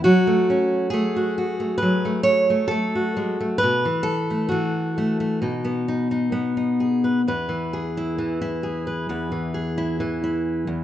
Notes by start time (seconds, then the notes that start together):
0.04 F#3 F#4
0.27 A3
0.50 C#4
0.90 A3 G#4
1.16 F#4
1.38 F#4
1.60 A3
1.78 B4
1.82 F#3
2.05 A3
2.23 C#5
2.50 A3
2.68 A3 A4
2.95 F#4
3.17 G#3
3.40 A3
3.58 B4
3.63 B2
3.85 E3
4.03 A4
4.30 A3
4.49 E3 F#4
4.98 A3
5.20 A3
5.42 B2 D#4
5.64 B3
5.88 D#4
6.11 D#4
6.32 B3
6.57 D#4
6.80 G#4
7.04 B4
7.28 E2 B4
7.49 E3
7.73 G#4
7.97 E4
8.18 E3
8.41 E4
8.63 G#4
8.87 B4
9.09 E2 B4
9.32 E3
9.54 G#4
9.78 E4
10.00 E3
10.24 E4
10.67 E2